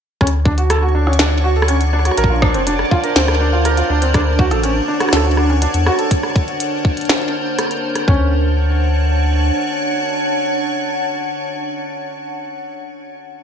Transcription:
0.21 2.11 D2 loud
0.21 0.26 C#4 medium
0.21 6.12 D4 medium
0.21 8.04 D4 medium
0.21 2.16 C#5 medium
0.21 2.16 F#5 medium
0.21 kick loud
0.21 cross-stick medium
0.27 closed hi-hat medium
0.45 0.51 D4 medium
0.45 kick loud
0.58 0.69 F#4 medium
0.58 closed hi-hat soft
0.70 0.82 A4 medium
0.70 cross-stick medium
0.70 closed hi-hat medium
0.82 0.91 F#4 medium
0.95 1.06 D4 medium
1.07 1.12 C#4 medium
1.07 cross-stick medium
1.13 closed hi-hat soft
1.19 1.24 D4 medium
1.19 snare loud
1.19 closed hi-hat medium
1.44 1.49 F#4 medium
1.56 1.65 A4 medium
1.62 cross-stick medium
1.68 1.74 C#4 medium
1.68 closed hi-hat medium
1.81 closed hi-hat medium
1.93 1.98 D4 medium
1.93 cross-stick soft
1.99 cross-stick soft
2.05 2.17 F#4 medium
2.05 cross-stick soft
2.05 closed hi-hat medium
2.11 cross-stick soft
2.18 2.56 A#1 loud
2.18 4.12 A#4 medium
2.18 2.29 A#4 loud
2.18 4.12 C5 medium
2.18 closed hi-hat medium
2.24 kick loud
2.30 2.38 F4 medium
2.42 2.54 D4 medium
2.42 kick loud
2.42 cross-stick medium
2.54 2.84 F1 medium
2.54 2.60 C4 medium
2.54 closed hi-hat soft
2.67 2.72 D4 medium
2.67 closed hi-hat medium
2.79 cross-stick medium
2.91 2.97 F4 loud
2.91 kick loud
3.04 3.12 A#4 medium
3.04 closed hi-hat soft
3.16 3.83 D2 medium
3.16 3.21 C4 medium
3.16 snare loud
3.16 closed hi-hat medium
3.28 cross-stick medium
3.41 3.46 D4 medium
3.53 3.65 F4 medium
3.65 3.77 A#4 loud
3.65 cross-stick medium
3.65 closed hi-hat medium
3.77 3.86 F4 medium
3.77 closed hi-hat medium
3.90 4.53 D2 medium
3.90 4.01 D4 medium
4.02 4.07 C4 medium
4.02 closed hi-hat medium
4.14 4.19 D4 medium
4.14 6.09 C#5 medium
4.14 6.09 F#5 medium
4.14 kick loud
4.14 cross-stick medium
4.14 closed hi-hat medium
4.39 4.44 F#4 loud
4.39 kick loud
4.51 4.81 A1 medium
4.51 4.60 A4 medium
4.51 cross-stick soft
4.51 closed hi-hat soft
4.64 4.69 C#4 medium
4.64 closed hi-hat medium
4.88 4.93 D4 medium
5.00 5.12 F#4 medium
5.00 cross-stick medium
5.00 closed hi-hat soft
5.09 cross-stick medium
5.13 5.67 D2 loud
5.13 5.24 A4 loud
5.13 snare loud
5.13 closed hi-hat medium
5.17 cross-stick medium
5.25 5.34 F#4 medium
5.37 5.49 D4 medium
5.37 cross-stick medium
5.50 5.55 C#4 medium
5.62 5.67 D4 medium
5.62 closed hi-hat medium
5.74 5.90 E2 loud
5.74 closed hi-hat medium
5.86 5.92 F#4 loud
5.86 cross-stick medium
5.99 6.07 A4 medium
5.99 closed hi-hat medium
6.11 8.06 A#4 medium
6.11 8.06 C5 medium
6.11 kick loud
6.11 closed hi-hat medium
6.23 cross-stick soft
6.36 kick loud
6.36 closed hi-hat soft
6.48 closed hi-hat soft
6.60 closed hi-hat medium
6.85 kick loud
6.97 closed hi-hat soft
7.01 closed hi-hat soft
7.05 closed hi-hat soft
7.09 cross-stick soft
7.09 snare loud
7.09 closed hi-hat medium
7.18 closed hi-hat soft
7.22 closed hi-hat soft
7.59 cross-stick medium
7.59 closed hi-hat medium
7.71 closed hi-hat soft
7.96 cross-stick medium
7.96 closed hi-hat medium
8.08 9.51 D2 loud
8.08 8.31 C#4 medium
8.08 12.38 D4 medium
8.08 12.38 C#5 medium
8.08 12.38 F#5 medium
8.08 kick loud

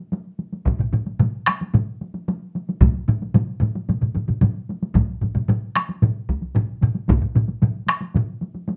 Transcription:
0.12 taiko high medium
0.39 taiko high soft
0.53 taiko high soft
0.65 taiko medium
0.65 taiko low-mid medium
0.65 taiko mid medium
0.65 taiko high medium
0.79 taiko low-mid medium
0.79 taiko mid medium
0.93 taiko low-mid medium
0.93 taiko mid medium
0.93 taiko high soft
1.07 taiko high soft
1.20 taiko low-mid medium
1.20 taiko mid medium
1.20 taiko high medium
1.46 taiko rim medium
1.46 taiko high soft
1.61 taiko high medium
1.74 taiko low-mid medium
1.74 taiko mid medium
1.74 taiko high medium
2.01 taiko high medium
2.14 taiko high soft
2.28 taiko high medium
2.55 taiko high medium
2.69 taiko high medium
2.81 taiko medium
2.81 taiko low-mid medium
2.81 taiko mid loud
2.81 taiko high medium
3.08 taiko low-mid medium
3.08 taiko mid medium
3.08 taiko high medium
3.22 taiko high medium
3.34 taiko low-mid medium
3.34 taiko mid medium
3.34 taiko high medium
3.61 taiko low-mid medium
3.61 taiko mid medium
3.61 taiko high medium
3.76 taiko high medium
3.89 taiko low-mid medium
3.89 taiko mid medium
3.89 taiko high medium
4.01 taiko low-mid medium
4.01 taiko mid medium
4.15 taiko low-mid medium
4.15 taiko mid medium
4.15 taiko high medium
4.28 taiko low-mid medium
4.28 taiko mid medium
4.28 taiko high soft
4.41 taiko low-mid medium
4.41 taiko mid medium
4.41 taiko high medium
4.69 taiko high medium
4.83 taiko high medium
4.94 taiko medium
4.94 taiko low-mid medium
4.94 taiko mid medium
4.94 taiko high medium
5.22 taiko low-mid medium
5.22 taiko mid medium
5.22 taiko high medium
5.35 taiko low-mid medium
5.35 taiko mid medium
5.35 taiko high medium
5.48 taiko low-mid medium
5.48 taiko mid medium
5.48 taiko high medium
5.75 taiko rim medium
5.75 taiko high soft
5.89 taiko high soft
6.02 taiko low-mid medium
6.02 taiko mid medium
6.02 taiko high medium
6.29 taiko medium
6.29 taiko high soft
6.42 taiko high soft
6.55 taiko low-mid medium
6.55 taiko mid medium
6.55 taiko high medium
6.81 taiko low-mid medium
6.81 taiko mid medium
6.81 taiko high soft
6.94 taiko high soft
7.08 taiko medium
7.08 taiko low-mid medium
7.08 taiko mid medium
7.08 taiko high medium
7.22 taiko low-mid medium
7.22 taiko mid medium
7.35 taiko low-mid medium
7.35 taiko mid medium
7.35 taiko high soft
7.48 taiko high soft
7.62 taiko low-mid medium
7.62 taiko mid medium
7.62 taiko high medium
7.88 taiko rim medium
7.88 taiko high soft
8.01 taiko high soft
8.14 taiko low-mid medium
8.14 taiko mid medium
8.14 taiko high medium
8.41 taiko high medium
8.55 taiko high soft
8.68 taiko high medium

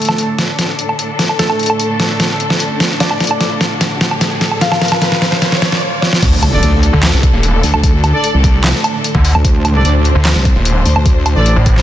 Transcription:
0.00 5.78 A2 medium
0.00 5.78 D3 medium
0.00 0.31 A3 medium
0.00 5.78 D4 medium
0.00 0.31 A4 medium
0.00 5.78 A4 medium
0.00 closed hi-hat medium
0.00 riser medium
0.05 snare soft
0.05 closed hi-hat medium
0.05 low woodblock medium
0.18 closed hi-hat medium
0.39 snare soft
0.39 closed hi-hat medium
0.59 snare medium
0.59 closed hi-hat medium
0.79 closed hi-hat soft
0.89 low woodblock soft
0.99 closed hi-hat medium
1.19 snare medium
1.19 open hi-hat medium
1.29 low woodblock soft
1.39 2.92 A3 medium
1.39 2.92 A4 loud
1.39 snare medium
1.39 closed hi-hat medium
1.50 low woodblock medium
1.59 closed hi-hat soft
1.63 closed hi-hat medium
1.66 closed hi-hat medium
1.66 low woodblock medium
1.80 closed hi-hat medium
2.00 snare medium
2.00 closed hi-hat soft
2.20 snare medium
2.20 closed hi-hat medium
2.40 closed hi-hat medium
2.50 snare medium
2.60 closed hi-hat medium
2.80 snare medium
2.80 open hi-hat medium
3.00 3.53 D4 medium
3.00 3.53 D5 loud
3.00 snare medium
3.00 closed hi-hat medium
3.11 low woodblock medium
3.20 snare medium
3.20 closed hi-hat soft
3.24 closed hi-hat medium
3.27 closed hi-hat medium
3.27 low woodblock medium
3.41 snare medium
3.41 closed hi-hat medium
3.61 snare medium
3.61 closed hi-hat soft
3.81 snare medium
3.81 closed hi-hat medium
4.01 snare medium
4.01 closed hi-hat medium
4.11 low woodblock medium
4.21 snare medium
4.21 closed hi-hat medium
4.41 snare medium
4.41 open hi-hat medium
4.51 low woodblock medium
4.61 6.15 F4 medium
4.61 6.15 F5 medium
4.61 snare loud
4.61 closed hi-hat medium
4.72 snare medium
4.72 low woodblock medium
4.82 snare medium
4.82 closed hi-hat soft
4.85 closed hi-hat medium
4.88 snare medium
4.88 closed hi-hat medium
4.88 low woodblock medium
5.02 snare medium
5.02 closed hi-hat medium
5.12 snare medium
5.22 snare medium
5.22 open hi-hat medium
5.32 snare medium
5.42 snare loud
5.42 closed hi-hat medium
5.52 snare medium
5.62 snare loud
5.62 closed hi-hat soft
5.72 snare medium
6.02 snare medium
6.13 snare medium
6.22 6.61 D2 loud
6.22 11.82 A2 medium
6.22 11.82 D3 medium
6.22 11.82 D4 medium
6.22 9.43 A4 medium
6.22 kick loud
6.22 closed hi-hat medium
6.22 crash loud
6.22 impact medium
6.43 closed hi-hat medium
6.43 low woodblock soft
6.53 6.71 D4 loud
6.53 6.71 A4 medium
6.53 6.71 D5 loud
6.63 6.92 D2 loud
6.63 closed hi-hat medium
6.83 closed hi-hat medium
6.93 7.12 D2 loud
7.03 snare loud
7.03 clap medium
7.03 closed hi-hat medium
7.13 7.32 C2 loud
7.23 kick loud
7.23 closed hi-hat medium
7.33 7.62 D#1 loud
7.43 closed hi-hat medium
7.63 7.72 D2 loud
7.63 open hi-hat medium
7.74 8.12 D2 loud
7.74 low woodblock medium
7.84 kick loud
7.84 closed hi-hat medium
8.04 closed hi-hat soft
8.04 low woodblock soft
8.14 8.32 D4 loud
8.14 8.32 A4 medium
8.14 8.32 D5 loud
8.24 closed hi-hat medium
8.34 8.73 C2 loud
8.44 kick loud
8.44 closed hi-hat medium
8.64 snare loud
8.64 clap medium
8.64 closed hi-hat medium
8.84 closed hi-hat medium
8.84 low woodblock medium
9.04 closed hi-hat medium
9.15 9.33 D2 loud
9.15 kick medium
9.25 open hi-hat medium
9.35 9.43 D2 medium
9.35 low woodblock medium
9.44 9.83 D2 loud
9.44 11.82 C5 medium
9.44 kick loud
9.44 closed hi-hat medium
9.65 closed hi-hat soft
9.65 low woodblock medium
9.75 9.93 D4 loud
9.75 9.93 A4 medium
9.75 9.93 D5 loud
9.85 10.14 D2 loud
9.85 closed hi-hat medium
10.05 closed hi-hat soft
10.15 10.34 D2 loud
10.25 snare loud
10.25 clap loud
10.25 closed hi-hat medium
10.35 10.54 C2 loud
10.45 kick loud
10.45 closed hi-hat soft
10.56 10.84 D#1 loud
10.65 closed hi-hat medium
10.85 10.94 D2 loud
10.85 open hi-hat medium
10.96 11.34 D2 loud
10.96 low woodblock medium
11.06 kick loud
11.06 closed hi-hat medium
11.26 closed hi-hat soft
11.26 low woodblock medium
11.36 11.55 A1 loud
11.36 11.54 D4 loud
11.36 11.54 A4 medium
11.36 11.54 D5 loud
11.46 closed hi-hat medium
11.56 11.82 A1 medium
11.66 kick loud
11.66 closed hi-hat medium
11.76 snare soft

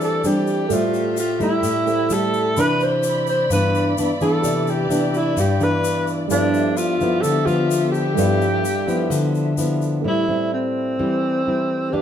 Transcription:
0.00 0.68 E3 medium
0.00 0.21 G3 medium
0.00 0.66 A3 medium
0.00 0.21 C4 medium
0.00 0.21 D4 medium
0.00 0.66 G4 soft
0.00 0.69 G4 medium
0.00 0.69 A4 medium
0.00 0.66 B4 soft
0.00 0.67 C5 soft
0.00 0.68 D5 soft
0.00 0.69 D5 medium
0.00 0.68 E5 medium
0.00 shaker soft
0.04 0.28 A4 medium
0.24 0.67 G3 medium
0.24 0.67 C4 medium
0.24 0.67 D4 medium
0.24 0.75 G4 medium
0.24 shaker medium
0.47 shaker soft
0.68 1.61 A2 medium
0.68 1.17 G3 medium
0.68 1.84 A3 soft
0.68 2.55 A3 medium
0.68 1.17 A3 medium
0.68 1.84 G4 soft
0.68 2.55 G4 medium
0.68 1.85 A4 soft
0.68 2.55 E5 medium
0.68 shaker medium
0.73 1.19 F4 loud
0.73 1.86 C5 soft
0.73 1.87 E5 medium
0.94 shaker soft
1.17 1.40 F4 medium
1.17 shaker medium
1.40 2.06 G3 medium
1.40 2.07 A3 medium
1.40 2.06 E4 medium
1.40 2.15 E4 loud
1.40 shaker soft
1.63 2.54 A2 medium
1.63 shaker medium
1.85 2.56 A3 soft
1.85 2.54 G4 soft
1.85 2.57 A4 soft
1.85 2.57 C5 soft
1.85 2.58 E5 soft
1.85 shaker soft
2.10 2.53 G3 medium
2.10 2.53 A3 medium
2.10 2.53 E4 medium
2.10 2.61 A4 medium
2.10 shaker medium
2.34 shaker soft
2.55 3.48 C3 medium
2.55 3.47 E3 medium
2.55 3.47 D4 medium
2.55 6.27 E4 medium
2.55 4.39 G4 soft
2.55 6.26 D5 medium
2.55 4.40 D5 soft
2.55 4.41 B5 medium
2.55 4.40 B5 soft
2.55 shaker medium
2.60 2.85 B4 loud
2.60 4.41 E5 medium
2.80 3.28 C5 medium
2.80 shaker soft
3.03 shaker medium
3.27 3.50 C5 medium
3.27 shaker soft
3.50 4.41 G2 medium
3.50 3.93 E3 medium
3.50 3.93 B3 medium
3.50 3.94 D4 medium
3.50 3.92 B4 medium
3.50 shaker medium
3.75 shaker soft
3.98 4.11 E3 medium
3.98 4.11 B3 medium
3.98 4.12 D4 medium
3.98 shaker medium
4.21 4.87 E3 medium
4.21 4.87 B3 medium
4.21 4.87 D4 medium
4.21 4.72 A4 medium
4.21 shaker soft
4.42 5.35 C3 medium
4.42 6.26 G4 soft
4.42 6.26 B4 soft
4.42 6.29 B4 medium
4.42 6.27 D5 soft
4.42 shaker medium
4.47 6.28 E5 medium
4.67 5.19 G4 medium
4.67 shaker soft
4.90 5.37 E3 medium
4.90 5.37 B3 medium
4.90 5.37 D4 medium
4.90 shaker medium
5.14 5.39 E4 medium
5.14 shaker soft
5.37 6.28 G2 medium
5.37 5.65 G4 medium
5.37 shaker medium
5.60 6.27 E3 medium
5.60 6.27 B3 medium
5.60 6.27 D4 medium
5.60 6.09 B4 loud
5.60 shaker soft
5.84 shaker medium
6.07 shaker soft
6.28 7.21 G2 medium
6.28 6.97 F3 medium
6.28 8.12 G3 medium
6.28 6.97 B3 medium
6.28 10.01 B3 medium
6.28 6.79 D4 medium
6.28 6.97 E4 medium
6.28 10.01 G4 medium
6.28 8.14 A4 soft
6.28 10.01 A4 medium
6.28 8.14 B4 soft
6.28 10.01 E5 medium
6.28 shaker medium
6.33 8.15 D5 soft
6.33 8.15 E5 medium
6.54 shaker soft
6.77 7.23 F4 medium
6.77 shaker medium
7.01 7.44 F3 medium
7.01 7.44 B3 medium
7.01 7.44 E4 medium
7.01 shaker soft
7.21 8.15 D3 medium
7.21 7.47 A4 loud
7.21 shaker medium
7.46 8.13 F3 medium
7.46 8.13 B3 medium
7.46 7.91 F4 loud
7.46 shaker soft
7.71 shaker medium
7.92 9.53 G4 loud
7.92 shaker soft
8.15 9.09 G2 medium
8.15 8.64 F3 medium
8.15 9.99 G3 soft
8.15 8.64 B3 medium
8.15 8.64 E4 medium
8.15 10.00 A4 soft
8.15 10.01 B4 soft
8.15 shaker medium
8.19 10.02 D5 soft
8.19 10.02 E5 medium
8.42 shaker soft
8.65 shaker medium
8.87 9.54 F3 medium
8.87 9.54 B3 medium
8.87 9.54 E4 medium
8.87 shaker soft
9.10 10.02 D3 medium
9.10 shaker medium
9.35 shaker soft
9.58 10.01 F3 medium
9.58 10.01 B3 medium
9.58 10.01 E4 medium
9.58 shaker medium
9.82 shaker soft
10.01 10.96 A2 medium
10.01 10.24 G3 soft
10.01 11.87 A3 soft
10.01 11.88 G4 soft
10.01 11.88 B4 soft
10.05 10.24 C4 soft
10.05 10.25 E4 medium
10.05 10.50 E4 medium
10.05 11.89 C5 soft
10.05 11.90 E5 soft
10.29 10.95 G3 soft
10.29 10.95 C4 soft
10.29 10.95 E4 medium
10.53 11.95 C4 medium
10.99 11.91 E3 medium
10.99 11.42 G3 soft
10.99 11.42 C4 soft
10.99 11.43 E4 soft
11.47 11.89 G3 soft
11.47 11.89 C4 soft
11.47 11.90 E4 medium
11.89 12.02 E3 medium
11.89 12.02 B3 soft
11.89 12.02 G4 soft
11.89 12.02 B4 soft
11.94 12.02 D4 medium
11.94 12.02 D4 soft
11.94 12.02 G4 soft
11.94 12.02 D5 soft
11.94 12.02 E5 soft

